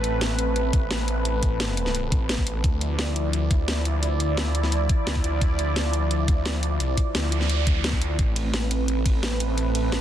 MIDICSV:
0, 0, Header, 1, 6, 480
1, 0, Start_track
1, 0, Tempo, 346821
1, 1733, Time_signature, 4, 2, 24, 8
1, 13852, End_track
2, 0, Start_track
2, 0, Title_t, "Ambient pad"
2, 0, Program_c, 0, 92
2, 0, Note_on_c, 0, 60, 87
2, 0, Note_on_c, 0, 71, 96
2, 0, Note_on_c, 0, 81, 91
2, 3654, Note_on_c, 0, 64, 87
2, 4015, Note_on_c, 0, 74, 96
2, 4403, Note_off_c, 0, 60, 0
2, 4860, Note_off_c, 0, 71, 0
2, 5489, Note_off_c, 0, 81, 0
2, 11333, Note_on_c, 0, 60, 91
2, 11638, Note_on_c, 0, 71, 78
2, 12237, Note_on_c, 0, 81, 74
2, 12594, Note_off_c, 0, 64, 0
2, 13099, Note_off_c, 0, 74, 0
2, 13852, Note_off_c, 0, 60, 0
2, 13852, Note_off_c, 0, 71, 0
2, 13852, Note_off_c, 0, 81, 0
2, 13852, End_track
3, 0, Start_track
3, 0, Title_t, "Analog synth pad"
3, 0, Program_c, 1, 89
3, 0, Note_on_c, 1, 57, 86
3, 0, Note_on_c, 1, 60, 77
3, 0, Note_on_c, 1, 71, 99
3, 3598, Note_off_c, 1, 57, 0
3, 3598, Note_off_c, 1, 60, 0
3, 3598, Note_off_c, 1, 71, 0
3, 3653, Note_on_c, 1, 53, 85
3, 3653, Note_on_c, 1, 64, 78
3, 3653, Note_on_c, 1, 74, 93
3, 11278, Note_off_c, 1, 53, 0
3, 11278, Note_off_c, 1, 64, 0
3, 11278, Note_off_c, 1, 74, 0
3, 11333, Note_on_c, 1, 57, 86
3, 11333, Note_on_c, 1, 60, 78
3, 11333, Note_on_c, 1, 71, 98
3, 13852, Note_off_c, 1, 57, 0
3, 13852, Note_off_c, 1, 60, 0
3, 13852, Note_off_c, 1, 71, 0
3, 13852, End_track
4, 0, Start_track
4, 0, Title_t, "Detuned saw bass"
4, 0, Program_c, 2, 39
4, 0, Note_on_c, 2, 33, 100
4, 994, Note_off_c, 2, 33, 0
4, 1014, Note_on_c, 2, 33, 97
4, 2914, Note_off_c, 2, 33, 0
4, 2934, Note_on_c, 2, 33, 95
4, 3634, Note_off_c, 2, 33, 0
4, 3653, Note_on_c, 2, 38, 97
4, 4834, Note_off_c, 2, 38, 0
4, 4854, Note_on_c, 2, 38, 97
4, 6754, Note_off_c, 2, 38, 0
4, 7013, Note_on_c, 2, 38, 103
4, 7234, Note_off_c, 2, 38, 0
4, 7253, Note_on_c, 2, 38, 100
4, 7474, Note_off_c, 2, 38, 0
4, 7494, Note_on_c, 2, 38, 101
4, 8674, Note_off_c, 2, 38, 0
4, 8693, Note_on_c, 2, 38, 97
4, 9394, Note_off_c, 2, 38, 0
4, 9413, Note_on_c, 2, 36, 98
4, 9634, Note_off_c, 2, 36, 0
4, 9892, Note_on_c, 2, 38, 101
4, 11314, Note_off_c, 2, 38, 0
4, 11333, Note_on_c, 2, 33, 97
4, 12514, Note_off_c, 2, 33, 0
4, 12533, Note_on_c, 2, 33, 98
4, 13852, Note_off_c, 2, 33, 0
4, 13852, End_track
5, 0, Start_track
5, 0, Title_t, "Noise sweep"
5, 0, Program_c, 3, 103
5, 9413, Note_on_c, 3, 60, 64
5, 11333, Note_off_c, 3, 60, 0
5, 13852, End_track
6, 0, Start_track
6, 0, Title_t, "Drums"
6, 54, Note_on_c, 9, 42, 98
6, 192, Note_off_c, 9, 42, 0
6, 294, Note_on_c, 9, 38, 127
6, 294, Note_on_c, 9, 42, 81
6, 432, Note_off_c, 9, 38, 0
6, 432, Note_off_c, 9, 42, 0
6, 534, Note_on_c, 9, 42, 102
6, 672, Note_off_c, 9, 42, 0
6, 774, Note_on_c, 9, 42, 85
6, 912, Note_off_c, 9, 42, 0
6, 1014, Note_on_c, 9, 36, 115
6, 1014, Note_on_c, 9, 42, 101
6, 1152, Note_off_c, 9, 36, 0
6, 1152, Note_off_c, 9, 42, 0
6, 1254, Note_on_c, 9, 38, 127
6, 1254, Note_on_c, 9, 42, 85
6, 1392, Note_off_c, 9, 38, 0
6, 1392, Note_off_c, 9, 42, 0
6, 1493, Note_on_c, 9, 42, 96
6, 1632, Note_off_c, 9, 42, 0
6, 1733, Note_on_c, 9, 42, 81
6, 1872, Note_off_c, 9, 42, 0
6, 1974, Note_on_c, 9, 36, 67
6, 1974, Note_on_c, 9, 42, 91
6, 2112, Note_off_c, 9, 36, 0
6, 2112, Note_off_c, 9, 42, 0
6, 2214, Note_on_c, 9, 38, 126
6, 2214, Note_on_c, 9, 42, 80
6, 2352, Note_off_c, 9, 38, 0
6, 2352, Note_off_c, 9, 42, 0
6, 2454, Note_on_c, 9, 42, 99
6, 2574, Note_on_c, 9, 38, 41
6, 2592, Note_off_c, 9, 42, 0
6, 2693, Note_on_c, 9, 42, 82
6, 2712, Note_off_c, 9, 38, 0
6, 2832, Note_off_c, 9, 42, 0
6, 2934, Note_on_c, 9, 36, 117
6, 2934, Note_on_c, 9, 42, 95
6, 3072, Note_off_c, 9, 36, 0
6, 3072, Note_off_c, 9, 42, 0
6, 3174, Note_on_c, 9, 38, 127
6, 3174, Note_on_c, 9, 42, 81
6, 3294, Note_on_c, 9, 36, 64
6, 3312, Note_off_c, 9, 38, 0
6, 3312, Note_off_c, 9, 42, 0
6, 3413, Note_on_c, 9, 42, 91
6, 3432, Note_off_c, 9, 36, 0
6, 3552, Note_off_c, 9, 42, 0
6, 3653, Note_on_c, 9, 36, 125
6, 3654, Note_on_c, 9, 42, 80
6, 3792, Note_off_c, 9, 36, 0
6, 3792, Note_off_c, 9, 42, 0
6, 3893, Note_on_c, 9, 42, 87
6, 4032, Note_off_c, 9, 42, 0
6, 4134, Note_on_c, 9, 38, 118
6, 4134, Note_on_c, 9, 42, 75
6, 4272, Note_off_c, 9, 38, 0
6, 4272, Note_off_c, 9, 42, 0
6, 4373, Note_on_c, 9, 42, 91
6, 4512, Note_off_c, 9, 42, 0
6, 4614, Note_on_c, 9, 42, 76
6, 4752, Note_off_c, 9, 42, 0
6, 4854, Note_on_c, 9, 36, 114
6, 4854, Note_on_c, 9, 42, 94
6, 4992, Note_off_c, 9, 36, 0
6, 4992, Note_off_c, 9, 42, 0
6, 5094, Note_on_c, 9, 38, 127
6, 5094, Note_on_c, 9, 42, 80
6, 5232, Note_off_c, 9, 38, 0
6, 5232, Note_off_c, 9, 42, 0
6, 5333, Note_on_c, 9, 42, 90
6, 5472, Note_off_c, 9, 42, 0
6, 5573, Note_on_c, 9, 42, 78
6, 5712, Note_off_c, 9, 42, 0
6, 5814, Note_on_c, 9, 42, 91
6, 5952, Note_off_c, 9, 42, 0
6, 6053, Note_on_c, 9, 38, 122
6, 6053, Note_on_c, 9, 42, 76
6, 6192, Note_off_c, 9, 38, 0
6, 6192, Note_off_c, 9, 42, 0
6, 6294, Note_on_c, 9, 42, 93
6, 6414, Note_on_c, 9, 38, 36
6, 6432, Note_off_c, 9, 42, 0
6, 6534, Note_on_c, 9, 42, 79
6, 6553, Note_off_c, 9, 38, 0
6, 6672, Note_off_c, 9, 42, 0
6, 6773, Note_on_c, 9, 36, 106
6, 6774, Note_on_c, 9, 42, 90
6, 6912, Note_off_c, 9, 36, 0
6, 6912, Note_off_c, 9, 42, 0
6, 7014, Note_on_c, 9, 38, 117
6, 7014, Note_on_c, 9, 42, 82
6, 7134, Note_on_c, 9, 36, 64
6, 7153, Note_off_c, 9, 38, 0
6, 7153, Note_off_c, 9, 42, 0
6, 7254, Note_on_c, 9, 42, 92
6, 7272, Note_off_c, 9, 36, 0
6, 7392, Note_off_c, 9, 42, 0
6, 7493, Note_on_c, 9, 36, 116
6, 7494, Note_on_c, 9, 42, 85
6, 7632, Note_off_c, 9, 36, 0
6, 7632, Note_off_c, 9, 42, 0
6, 7734, Note_on_c, 9, 42, 90
6, 7872, Note_off_c, 9, 42, 0
6, 7974, Note_on_c, 9, 38, 114
6, 7974, Note_on_c, 9, 42, 79
6, 8112, Note_off_c, 9, 38, 0
6, 8112, Note_off_c, 9, 42, 0
6, 8214, Note_on_c, 9, 42, 93
6, 8352, Note_off_c, 9, 42, 0
6, 8454, Note_on_c, 9, 42, 79
6, 8592, Note_off_c, 9, 42, 0
6, 8693, Note_on_c, 9, 36, 107
6, 8694, Note_on_c, 9, 42, 94
6, 8831, Note_off_c, 9, 36, 0
6, 8832, Note_off_c, 9, 42, 0
6, 8934, Note_on_c, 9, 38, 121
6, 8934, Note_on_c, 9, 42, 81
6, 9072, Note_off_c, 9, 38, 0
6, 9072, Note_off_c, 9, 42, 0
6, 9174, Note_on_c, 9, 42, 93
6, 9312, Note_off_c, 9, 42, 0
6, 9413, Note_on_c, 9, 42, 83
6, 9552, Note_off_c, 9, 42, 0
6, 9653, Note_on_c, 9, 36, 62
6, 9653, Note_on_c, 9, 42, 95
6, 9791, Note_off_c, 9, 36, 0
6, 9792, Note_off_c, 9, 42, 0
6, 9893, Note_on_c, 9, 38, 122
6, 9893, Note_on_c, 9, 42, 81
6, 10031, Note_off_c, 9, 38, 0
6, 10031, Note_off_c, 9, 42, 0
6, 10133, Note_on_c, 9, 42, 97
6, 10253, Note_on_c, 9, 38, 36
6, 10271, Note_off_c, 9, 42, 0
6, 10373, Note_on_c, 9, 42, 88
6, 10391, Note_off_c, 9, 38, 0
6, 10511, Note_off_c, 9, 42, 0
6, 10613, Note_on_c, 9, 36, 105
6, 10613, Note_on_c, 9, 42, 103
6, 10751, Note_off_c, 9, 36, 0
6, 10751, Note_off_c, 9, 42, 0
6, 10853, Note_on_c, 9, 38, 123
6, 10853, Note_on_c, 9, 42, 88
6, 10973, Note_on_c, 9, 36, 62
6, 10991, Note_off_c, 9, 38, 0
6, 10991, Note_off_c, 9, 42, 0
6, 11093, Note_on_c, 9, 42, 93
6, 11111, Note_off_c, 9, 36, 0
6, 11232, Note_off_c, 9, 42, 0
6, 11333, Note_on_c, 9, 36, 127
6, 11333, Note_on_c, 9, 42, 85
6, 11471, Note_off_c, 9, 36, 0
6, 11472, Note_off_c, 9, 42, 0
6, 11573, Note_on_c, 9, 42, 97
6, 11573, Note_on_c, 9, 53, 80
6, 11711, Note_off_c, 9, 42, 0
6, 11711, Note_off_c, 9, 53, 0
6, 11813, Note_on_c, 9, 38, 118
6, 11813, Note_on_c, 9, 42, 88
6, 11952, Note_off_c, 9, 38, 0
6, 11952, Note_off_c, 9, 42, 0
6, 12053, Note_on_c, 9, 42, 96
6, 12053, Note_on_c, 9, 53, 77
6, 12192, Note_off_c, 9, 42, 0
6, 12192, Note_off_c, 9, 53, 0
6, 12293, Note_on_c, 9, 42, 89
6, 12431, Note_off_c, 9, 42, 0
6, 12533, Note_on_c, 9, 36, 111
6, 12533, Note_on_c, 9, 42, 99
6, 12533, Note_on_c, 9, 53, 83
6, 12672, Note_off_c, 9, 36, 0
6, 12672, Note_off_c, 9, 42, 0
6, 12672, Note_off_c, 9, 53, 0
6, 12773, Note_on_c, 9, 38, 122
6, 12773, Note_on_c, 9, 42, 85
6, 12912, Note_off_c, 9, 38, 0
6, 12912, Note_off_c, 9, 42, 0
6, 13013, Note_on_c, 9, 42, 100
6, 13013, Note_on_c, 9, 53, 80
6, 13152, Note_off_c, 9, 42, 0
6, 13152, Note_off_c, 9, 53, 0
6, 13253, Note_on_c, 9, 42, 85
6, 13392, Note_off_c, 9, 42, 0
6, 13493, Note_on_c, 9, 42, 98
6, 13493, Note_on_c, 9, 53, 75
6, 13632, Note_off_c, 9, 42, 0
6, 13632, Note_off_c, 9, 53, 0
6, 13733, Note_on_c, 9, 38, 127
6, 13733, Note_on_c, 9, 42, 87
6, 13852, Note_off_c, 9, 38, 0
6, 13852, Note_off_c, 9, 42, 0
6, 13852, End_track
0, 0, End_of_file